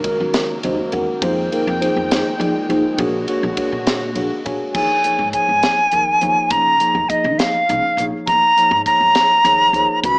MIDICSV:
0, 0, Header, 1, 7, 480
1, 0, Start_track
1, 0, Tempo, 587659
1, 997, Time_signature, 6, 3, 24, 8
1, 8322, End_track
2, 0, Start_track
2, 0, Title_t, "Flute"
2, 0, Program_c, 0, 73
2, 3871, Note_on_c, 0, 80, 81
2, 4321, Note_off_c, 0, 80, 0
2, 4362, Note_on_c, 0, 80, 87
2, 5320, Note_on_c, 0, 82, 91
2, 5332, Note_off_c, 0, 80, 0
2, 5793, Note_on_c, 0, 75, 76
2, 5805, Note_off_c, 0, 82, 0
2, 6032, Note_on_c, 0, 77, 75
2, 6044, Note_off_c, 0, 75, 0
2, 6574, Note_off_c, 0, 77, 0
2, 6755, Note_on_c, 0, 82, 103
2, 7203, Note_off_c, 0, 82, 0
2, 7239, Note_on_c, 0, 82, 103
2, 8165, Note_off_c, 0, 82, 0
2, 8204, Note_on_c, 0, 83, 106
2, 8322, Note_off_c, 0, 83, 0
2, 8322, End_track
3, 0, Start_track
3, 0, Title_t, "Tine electric piano"
3, 0, Program_c, 1, 4
3, 31, Note_on_c, 1, 51, 65
3, 31, Note_on_c, 1, 56, 64
3, 35, Note_on_c, 1, 61, 61
3, 40, Note_on_c, 1, 66, 62
3, 40, Note_on_c, 1, 70, 74
3, 458, Note_off_c, 1, 51, 0
3, 458, Note_off_c, 1, 56, 0
3, 460, Note_off_c, 1, 61, 0
3, 462, Note_off_c, 1, 66, 0
3, 462, Note_off_c, 1, 70, 0
3, 515, Note_on_c, 1, 51, 68
3, 517, Note_on_c, 1, 56, 71
3, 519, Note_on_c, 1, 61, 68
3, 521, Note_on_c, 1, 75, 66
3, 523, Note_on_c, 1, 66, 62
3, 526, Note_on_c, 1, 72, 71
3, 728, Note_off_c, 1, 51, 0
3, 729, Note_off_c, 1, 56, 0
3, 730, Note_off_c, 1, 61, 0
3, 732, Note_off_c, 1, 66, 0
3, 733, Note_off_c, 1, 72, 0
3, 742, Note_off_c, 1, 75, 0
3, 757, Note_on_c, 1, 51, 81
3, 758, Note_on_c, 1, 56, 61
3, 762, Note_on_c, 1, 61, 66
3, 762, Note_on_c, 1, 78, 71
3, 766, Note_on_c, 1, 66, 67
3, 768, Note_on_c, 1, 70, 74
3, 983, Note_off_c, 1, 78, 0
3, 994, Note_on_c, 1, 53, 89
3, 997, Note_off_c, 1, 51, 0
3, 997, Note_off_c, 1, 56, 0
3, 999, Note_off_c, 1, 61, 0
3, 999, Note_on_c, 1, 58, 84
3, 1002, Note_off_c, 1, 66, 0
3, 1002, Note_off_c, 1, 70, 0
3, 1003, Note_on_c, 1, 63, 79
3, 1003, Note_on_c, 1, 68, 80
3, 1007, Note_on_c, 1, 72, 103
3, 1207, Note_off_c, 1, 53, 0
3, 1210, Note_off_c, 1, 58, 0
3, 1212, Note_off_c, 1, 63, 0
3, 1212, Note_off_c, 1, 68, 0
3, 1214, Note_off_c, 1, 72, 0
3, 1238, Note_on_c, 1, 58, 72
3, 1239, Note_on_c, 1, 53, 70
3, 1243, Note_on_c, 1, 63, 59
3, 1247, Note_on_c, 1, 68, 57
3, 1248, Note_on_c, 1, 70, 76
3, 1450, Note_off_c, 1, 53, 0
3, 1450, Note_off_c, 1, 58, 0
3, 1452, Note_off_c, 1, 63, 0
3, 1454, Note_off_c, 1, 68, 0
3, 1454, Note_off_c, 1, 70, 0
3, 1473, Note_on_c, 1, 53, 72
3, 1477, Note_on_c, 1, 63, 61
3, 1479, Note_on_c, 1, 58, 58
3, 1480, Note_on_c, 1, 68, 64
3, 1483, Note_on_c, 1, 72, 85
3, 1899, Note_off_c, 1, 53, 0
3, 1901, Note_off_c, 1, 63, 0
3, 1902, Note_off_c, 1, 58, 0
3, 1902, Note_off_c, 1, 68, 0
3, 1904, Note_off_c, 1, 72, 0
3, 1952, Note_on_c, 1, 53, 79
3, 1952, Note_on_c, 1, 58, 66
3, 1958, Note_on_c, 1, 68, 64
3, 1959, Note_on_c, 1, 63, 67
3, 1964, Note_on_c, 1, 74, 72
3, 2166, Note_off_c, 1, 53, 0
3, 2167, Note_off_c, 1, 58, 0
3, 2170, Note_off_c, 1, 63, 0
3, 2170, Note_off_c, 1, 68, 0
3, 2173, Note_off_c, 1, 74, 0
3, 2191, Note_on_c, 1, 53, 70
3, 2196, Note_on_c, 1, 58, 68
3, 2198, Note_on_c, 1, 63, 62
3, 2204, Note_on_c, 1, 68, 69
3, 2205, Note_on_c, 1, 72, 77
3, 2421, Note_off_c, 1, 58, 0
3, 2430, Note_off_c, 1, 68, 0
3, 2431, Note_on_c, 1, 58, 90
3, 2434, Note_off_c, 1, 53, 0
3, 2435, Note_on_c, 1, 66, 77
3, 2437, Note_on_c, 1, 62, 80
3, 2438, Note_off_c, 1, 63, 0
3, 2440, Note_on_c, 1, 68, 84
3, 2441, Note_off_c, 1, 72, 0
3, 2444, Note_on_c, 1, 73, 88
3, 2646, Note_off_c, 1, 58, 0
3, 2648, Note_off_c, 1, 66, 0
3, 2649, Note_off_c, 1, 62, 0
3, 2650, Note_off_c, 1, 68, 0
3, 2652, Note_off_c, 1, 73, 0
3, 2679, Note_on_c, 1, 58, 71
3, 2682, Note_on_c, 1, 62, 59
3, 2684, Note_on_c, 1, 66, 68
3, 2689, Note_on_c, 1, 68, 57
3, 2692, Note_on_c, 1, 73, 78
3, 2890, Note_off_c, 1, 58, 0
3, 2891, Note_off_c, 1, 62, 0
3, 2892, Note_off_c, 1, 66, 0
3, 2895, Note_off_c, 1, 68, 0
3, 2896, Note_off_c, 1, 73, 0
3, 2914, Note_on_c, 1, 66, 68
3, 2915, Note_on_c, 1, 58, 67
3, 2916, Note_on_c, 1, 62, 70
3, 2922, Note_on_c, 1, 68, 59
3, 2925, Note_on_c, 1, 73, 77
3, 3339, Note_off_c, 1, 66, 0
3, 3340, Note_off_c, 1, 58, 0
3, 3340, Note_off_c, 1, 62, 0
3, 3343, Note_off_c, 1, 68, 0
3, 3345, Note_off_c, 1, 73, 0
3, 3394, Note_on_c, 1, 58, 73
3, 3396, Note_on_c, 1, 62, 59
3, 3398, Note_on_c, 1, 66, 67
3, 3398, Note_on_c, 1, 73, 65
3, 3401, Note_on_c, 1, 68, 69
3, 3415, Note_off_c, 1, 73, 0
3, 3607, Note_off_c, 1, 58, 0
3, 3608, Note_off_c, 1, 62, 0
3, 3609, Note_off_c, 1, 66, 0
3, 3611, Note_off_c, 1, 68, 0
3, 3633, Note_on_c, 1, 58, 74
3, 3638, Note_on_c, 1, 62, 59
3, 3640, Note_on_c, 1, 80, 66
3, 3641, Note_on_c, 1, 68, 62
3, 3642, Note_on_c, 1, 66, 61
3, 3644, Note_on_c, 1, 73, 87
3, 3862, Note_off_c, 1, 80, 0
3, 3871, Note_off_c, 1, 58, 0
3, 3877, Note_off_c, 1, 73, 0
3, 3878, Note_off_c, 1, 62, 0
3, 3878, Note_on_c, 1, 53, 72
3, 3879, Note_off_c, 1, 66, 0
3, 3879, Note_off_c, 1, 68, 0
3, 3881, Note_on_c, 1, 58, 62
3, 3881, Note_on_c, 1, 63, 65
3, 3887, Note_on_c, 1, 73, 77
3, 3888, Note_on_c, 1, 68, 70
3, 4089, Note_off_c, 1, 53, 0
3, 4090, Note_off_c, 1, 63, 0
3, 4091, Note_off_c, 1, 58, 0
3, 4094, Note_off_c, 1, 68, 0
3, 4094, Note_off_c, 1, 73, 0
3, 4116, Note_on_c, 1, 53, 55
3, 4118, Note_on_c, 1, 63, 46
3, 4121, Note_on_c, 1, 58, 53
3, 4124, Note_on_c, 1, 68, 45
3, 4129, Note_on_c, 1, 73, 59
3, 4328, Note_off_c, 1, 53, 0
3, 4329, Note_off_c, 1, 63, 0
3, 4331, Note_off_c, 1, 58, 0
3, 4332, Note_off_c, 1, 68, 0
3, 4335, Note_off_c, 1, 73, 0
3, 4349, Note_on_c, 1, 58, 45
3, 4351, Note_on_c, 1, 53, 53
3, 4352, Note_on_c, 1, 63, 52
3, 4357, Note_on_c, 1, 68, 51
3, 4360, Note_on_c, 1, 73, 58
3, 4777, Note_off_c, 1, 53, 0
3, 4777, Note_off_c, 1, 58, 0
3, 4778, Note_off_c, 1, 63, 0
3, 4781, Note_off_c, 1, 68, 0
3, 4782, Note_off_c, 1, 73, 0
3, 4833, Note_on_c, 1, 53, 55
3, 4835, Note_on_c, 1, 58, 50
3, 4838, Note_on_c, 1, 63, 54
3, 4839, Note_on_c, 1, 68, 57
3, 4843, Note_on_c, 1, 70, 67
3, 5047, Note_off_c, 1, 53, 0
3, 5048, Note_off_c, 1, 58, 0
3, 5049, Note_off_c, 1, 63, 0
3, 5050, Note_off_c, 1, 68, 0
3, 5052, Note_off_c, 1, 70, 0
3, 5070, Note_on_c, 1, 53, 78
3, 5075, Note_on_c, 1, 58, 70
3, 5076, Note_on_c, 1, 63, 68
3, 5079, Note_on_c, 1, 68, 59
3, 5084, Note_on_c, 1, 73, 84
3, 5497, Note_off_c, 1, 53, 0
3, 5500, Note_off_c, 1, 58, 0
3, 5500, Note_off_c, 1, 63, 0
3, 5501, Note_off_c, 1, 68, 0
3, 5504, Note_off_c, 1, 73, 0
3, 5548, Note_on_c, 1, 53, 59
3, 5556, Note_on_c, 1, 58, 54
3, 5556, Note_on_c, 1, 63, 47
3, 5559, Note_on_c, 1, 68, 55
3, 5561, Note_on_c, 1, 73, 70
3, 5764, Note_off_c, 1, 53, 0
3, 5768, Note_off_c, 1, 58, 0
3, 5768, Note_off_c, 1, 63, 0
3, 5769, Note_off_c, 1, 68, 0
3, 5771, Note_off_c, 1, 73, 0
3, 5790, Note_on_c, 1, 53, 49
3, 5796, Note_on_c, 1, 58, 53
3, 5801, Note_on_c, 1, 63, 50
3, 5801, Note_on_c, 1, 68, 49
3, 5806, Note_on_c, 1, 75, 64
3, 6217, Note_off_c, 1, 53, 0
3, 6220, Note_off_c, 1, 58, 0
3, 6222, Note_off_c, 1, 68, 0
3, 6223, Note_off_c, 1, 63, 0
3, 6225, Note_off_c, 1, 75, 0
3, 6277, Note_on_c, 1, 53, 58
3, 6278, Note_on_c, 1, 58, 46
3, 6278, Note_on_c, 1, 63, 55
3, 6283, Note_on_c, 1, 68, 52
3, 6287, Note_on_c, 1, 73, 60
3, 6489, Note_off_c, 1, 53, 0
3, 6489, Note_off_c, 1, 58, 0
3, 6489, Note_off_c, 1, 63, 0
3, 6492, Note_off_c, 1, 68, 0
3, 6494, Note_off_c, 1, 73, 0
3, 6520, Note_on_c, 1, 53, 60
3, 6524, Note_on_c, 1, 58, 56
3, 6528, Note_on_c, 1, 63, 57
3, 6530, Note_on_c, 1, 68, 59
3, 6532, Note_on_c, 1, 73, 71
3, 6942, Note_off_c, 1, 53, 0
3, 6944, Note_off_c, 1, 58, 0
3, 6946, Note_off_c, 1, 63, 0
3, 6947, Note_off_c, 1, 68, 0
3, 6948, Note_off_c, 1, 73, 0
3, 7005, Note_on_c, 1, 53, 63
3, 7007, Note_on_c, 1, 58, 53
3, 7012, Note_on_c, 1, 63, 53
3, 7012, Note_on_c, 1, 68, 59
3, 7013, Note_on_c, 1, 73, 64
3, 7213, Note_off_c, 1, 53, 0
3, 7214, Note_off_c, 1, 58, 0
3, 7216, Note_off_c, 1, 63, 0
3, 7216, Note_off_c, 1, 68, 0
3, 7217, Note_off_c, 1, 73, 0
3, 7243, Note_on_c, 1, 53, 52
3, 7245, Note_on_c, 1, 58, 51
3, 7250, Note_on_c, 1, 63, 47
3, 7251, Note_on_c, 1, 68, 59
3, 7252, Note_on_c, 1, 73, 59
3, 7664, Note_off_c, 1, 53, 0
3, 7664, Note_off_c, 1, 58, 0
3, 7667, Note_off_c, 1, 63, 0
3, 7668, Note_off_c, 1, 68, 0
3, 7668, Note_off_c, 1, 73, 0
3, 7720, Note_on_c, 1, 58, 52
3, 7722, Note_on_c, 1, 53, 60
3, 7723, Note_on_c, 1, 63, 56
3, 7728, Note_on_c, 1, 68, 59
3, 7728, Note_on_c, 1, 73, 60
3, 7930, Note_off_c, 1, 58, 0
3, 7931, Note_off_c, 1, 53, 0
3, 7932, Note_off_c, 1, 63, 0
3, 7934, Note_off_c, 1, 68, 0
3, 7934, Note_off_c, 1, 73, 0
3, 7961, Note_on_c, 1, 53, 72
3, 7962, Note_on_c, 1, 58, 68
3, 7964, Note_on_c, 1, 63, 65
3, 7971, Note_on_c, 1, 68, 63
3, 7971, Note_on_c, 1, 73, 83
3, 8192, Note_on_c, 1, 51, 69
3, 8195, Note_on_c, 1, 56, 67
3, 8198, Note_on_c, 1, 61, 66
3, 8199, Note_off_c, 1, 53, 0
3, 8199, Note_off_c, 1, 58, 0
3, 8200, Note_off_c, 1, 63, 0
3, 8202, Note_on_c, 1, 66, 68
3, 8204, Note_off_c, 1, 68, 0
3, 8204, Note_off_c, 1, 73, 0
3, 8205, Note_on_c, 1, 71, 77
3, 8322, Note_off_c, 1, 51, 0
3, 8322, Note_off_c, 1, 56, 0
3, 8322, Note_off_c, 1, 61, 0
3, 8322, Note_off_c, 1, 66, 0
3, 8322, Note_off_c, 1, 71, 0
3, 8322, End_track
4, 0, Start_track
4, 0, Title_t, "String section"
4, 0, Program_c, 2, 48
4, 0, Note_on_c, 2, 49, 67
4, 0, Note_on_c, 2, 54, 59
4, 0, Note_on_c, 2, 58, 63
4, 970, Note_off_c, 2, 49, 0
4, 974, Note_off_c, 2, 54, 0
4, 1002, Note_on_c, 2, 79, 82
4, 1006, Note_on_c, 2, 56, 66
4, 1007, Note_on_c, 2, 51, 73
4, 2410, Note_off_c, 2, 58, 0
4, 2425, Note_off_c, 2, 79, 0
4, 2425, Note_on_c, 2, 50, 70
4, 2427, Note_off_c, 2, 51, 0
4, 2431, Note_on_c, 2, 66, 78
4, 3853, Note_off_c, 2, 56, 0
4, 3856, Note_off_c, 2, 50, 0
4, 3859, Note_off_c, 2, 66, 0
4, 8322, End_track
5, 0, Start_track
5, 0, Title_t, "Upright bass"
5, 0, Program_c, 3, 32
5, 166, Note_on_c, 3, 51, 78
5, 527, Note_on_c, 3, 39, 80
5, 540, Note_off_c, 3, 51, 0
5, 621, Note_off_c, 3, 39, 0
5, 760, Note_on_c, 3, 40, 83
5, 857, Note_off_c, 3, 40, 0
5, 999, Note_on_c, 3, 41, 96
5, 1194, Note_off_c, 3, 41, 0
5, 1366, Note_on_c, 3, 41, 90
5, 1559, Note_off_c, 3, 41, 0
5, 1604, Note_on_c, 3, 41, 76
5, 1797, Note_off_c, 3, 41, 0
5, 1957, Note_on_c, 3, 53, 82
5, 2153, Note_off_c, 3, 53, 0
5, 2202, Note_on_c, 3, 39, 84
5, 2298, Note_off_c, 3, 39, 0
5, 2441, Note_on_c, 3, 34, 93
5, 2635, Note_off_c, 3, 34, 0
5, 2802, Note_on_c, 3, 34, 85
5, 2898, Note_off_c, 3, 34, 0
5, 3040, Note_on_c, 3, 46, 79
5, 3392, Note_on_c, 3, 34, 74
5, 3405, Note_off_c, 3, 46, 0
5, 3492, Note_off_c, 3, 34, 0
5, 3642, Note_on_c, 3, 46, 84
5, 3738, Note_off_c, 3, 46, 0
5, 3878, Note_on_c, 3, 39, 83
5, 3976, Note_off_c, 3, 39, 0
5, 4236, Note_on_c, 3, 44, 88
5, 4334, Note_off_c, 3, 44, 0
5, 4481, Note_on_c, 3, 44, 72
5, 4577, Note_off_c, 3, 44, 0
5, 4841, Note_on_c, 3, 39, 76
5, 5036, Note_off_c, 3, 39, 0
5, 5084, Note_on_c, 3, 39, 79
5, 5179, Note_off_c, 3, 39, 0
5, 5316, Note_on_c, 3, 49, 77
5, 5513, Note_off_c, 3, 49, 0
5, 5675, Note_on_c, 3, 39, 83
5, 5774, Note_off_c, 3, 39, 0
5, 5916, Note_on_c, 3, 51, 91
5, 6014, Note_off_c, 3, 51, 0
5, 6285, Note_on_c, 3, 37, 86
5, 6380, Note_off_c, 3, 37, 0
5, 6510, Note_on_c, 3, 34, 80
5, 6611, Note_off_c, 3, 34, 0
5, 6760, Note_on_c, 3, 39, 90
5, 6857, Note_off_c, 3, 39, 0
5, 7114, Note_on_c, 3, 44, 90
5, 7213, Note_off_c, 3, 44, 0
5, 7356, Note_on_c, 3, 44, 75
5, 7454, Note_off_c, 3, 44, 0
5, 7714, Note_on_c, 3, 39, 88
5, 7911, Note_off_c, 3, 39, 0
5, 7948, Note_on_c, 3, 39, 82
5, 8050, Note_off_c, 3, 39, 0
5, 8199, Note_on_c, 3, 37, 85
5, 8322, Note_off_c, 3, 37, 0
5, 8322, End_track
6, 0, Start_track
6, 0, Title_t, "Muted upright bass strokes"
6, 2916, Note_on_c, 9, 29, 36
6, 2998, Note_off_c, 9, 29, 0
6, 4124, Note_on_c, 9, 29, 32
6, 4206, Note_off_c, 9, 29, 0
6, 4728, Note_on_c, 9, 29, 34
6, 4810, Note_off_c, 9, 29, 0
6, 5797, Note_on_c, 9, 29, 32
6, 5878, Note_off_c, 9, 29, 0
6, 6164, Note_on_c, 9, 29, 33
6, 6246, Note_off_c, 9, 29, 0
6, 6399, Note_on_c, 9, 29, 37
6, 6480, Note_off_c, 9, 29, 0
6, 6637, Note_on_c, 9, 29, 34
6, 6719, Note_off_c, 9, 29, 0
6, 6996, Note_on_c, 9, 29, 34
6, 7077, Note_off_c, 9, 29, 0
6, 7596, Note_on_c, 9, 29, 32
6, 7678, Note_off_c, 9, 29, 0
6, 8322, End_track
7, 0, Start_track
7, 0, Title_t, "Drums"
7, 34, Note_on_c, 9, 36, 75
7, 34, Note_on_c, 9, 51, 60
7, 116, Note_off_c, 9, 36, 0
7, 116, Note_off_c, 9, 51, 0
7, 275, Note_on_c, 9, 51, 74
7, 280, Note_on_c, 9, 38, 94
7, 357, Note_off_c, 9, 51, 0
7, 362, Note_off_c, 9, 38, 0
7, 517, Note_on_c, 9, 51, 59
7, 599, Note_off_c, 9, 51, 0
7, 753, Note_on_c, 9, 51, 53
7, 834, Note_off_c, 9, 51, 0
7, 996, Note_on_c, 9, 36, 97
7, 997, Note_on_c, 9, 51, 82
7, 1078, Note_off_c, 9, 36, 0
7, 1079, Note_off_c, 9, 51, 0
7, 1244, Note_on_c, 9, 51, 55
7, 1326, Note_off_c, 9, 51, 0
7, 1487, Note_on_c, 9, 51, 59
7, 1569, Note_off_c, 9, 51, 0
7, 1726, Note_on_c, 9, 51, 73
7, 1731, Note_on_c, 9, 38, 100
7, 1808, Note_off_c, 9, 51, 0
7, 1813, Note_off_c, 9, 38, 0
7, 1966, Note_on_c, 9, 51, 54
7, 2048, Note_off_c, 9, 51, 0
7, 2203, Note_on_c, 9, 51, 46
7, 2285, Note_off_c, 9, 51, 0
7, 2436, Note_on_c, 9, 51, 73
7, 2439, Note_on_c, 9, 36, 102
7, 2518, Note_off_c, 9, 51, 0
7, 2520, Note_off_c, 9, 36, 0
7, 2677, Note_on_c, 9, 51, 59
7, 2759, Note_off_c, 9, 51, 0
7, 2916, Note_on_c, 9, 51, 66
7, 2918, Note_on_c, 9, 36, 76
7, 2997, Note_off_c, 9, 51, 0
7, 2999, Note_off_c, 9, 36, 0
7, 3158, Note_on_c, 9, 51, 69
7, 3163, Note_on_c, 9, 38, 99
7, 3240, Note_off_c, 9, 51, 0
7, 3245, Note_off_c, 9, 38, 0
7, 3394, Note_on_c, 9, 51, 53
7, 3475, Note_off_c, 9, 51, 0
7, 3640, Note_on_c, 9, 51, 54
7, 3722, Note_off_c, 9, 51, 0
7, 3875, Note_on_c, 9, 49, 89
7, 3877, Note_on_c, 9, 36, 98
7, 3957, Note_off_c, 9, 49, 0
7, 3959, Note_off_c, 9, 36, 0
7, 4117, Note_on_c, 9, 42, 59
7, 4199, Note_off_c, 9, 42, 0
7, 4355, Note_on_c, 9, 42, 56
7, 4357, Note_on_c, 9, 36, 65
7, 4437, Note_off_c, 9, 42, 0
7, 4438, Note_off_c, 9, 36, 0
7, 4597, Note_on_c, 9, 42, 69
7, 4602, Note_on_c, 9, 38, 98
7, 4679, Note_off_c, 9, 42, 0
7, 4684, Note_off_c, 9, 38, 0
7, 4832, Note_on_c, 9, 42, 52
7, 4913, Note_off_c, 9, 42, 0
7, 5076, Note_on_c, 9, 42, 50
7, 5158, Note_off_c, 9, 42, 0
7, 5313, Note_on_c, 9, 42, 70
7, 5316, Note_on_c, 9, 36, 93
7, 5395, Note_off_c, 9, 42, 0
7, 5397, Note_off_c, 9, 36, 0
7, 5555, Note_on_c, 9, 42, 51
7, 5637, Note_off_c, 9, 42, 0
7, 5797, Note_on_c, 9, 36, 73
7, 5801, Note_on_c, 9, 42, 50
7, 5879, Note_off_c, 9, 36, 0
7, 5883, Note_off_c, 9, 42, 0
7, 6038, Note_on_c, 9, 42, 65
7, 6043, Note_on_c, 9, 38, 92
7, 6120, Note_off_c, 9, 42, 0
7, 6124, Note_off_c, 9, 38, 0
7, 6283, Note_on_c, 9, 42, 49
7, 6365, Note_off_c, 9, 42, 0
7, 6521, Note_on_c, 9, 42, 52
7, 6602, Note_off_c, 9, 42, 0
7, 6758, Note_on_c, 9, 36, 92
7, 6760, Note_on_c, 9, 42, 77
7, 6840, Note_off_c, 9, 36, 0
7, 6841, Note_off_c, 9, 42, 0
7, 7005, Note_on_c, 9, 42, 53
7, 7087, Note_off_c, 9, 42, 0
7, 7236, Note_on_c, 9, 36, 70
7, 7239, Note_on_c, 9, 42, 54
7, 7318, Note_off_c, 9, 36, 0
7, 7321, Note_off_c, 9, 42, 0
7, 7473, Note_on_c, 9, 42, 73
7, 7478, Note_on_c, 9, 38, 87
7, 7555, Note_off_c, 9, 42, 0
7, 7560, Note_off_c, 9, 38, 0
7, 7718, Note_on_c, 9, 42, 60
7, 7800, Note_off_c, 9, 42, 0
7, 7958, Note_on_c, 9, 42, 48
7, 8040, Note_off_c, 9, 42, 0
7, 8197, Note_on_c, 9, 36, 101
7, 8199, Note_on_c, 9, 42, 79
7, 8279, Note_off_c, 9, 36, 0
7, 8280, Note_off_c, 9, 42, 0
7, 8322, End_track
0, 0, End_of_file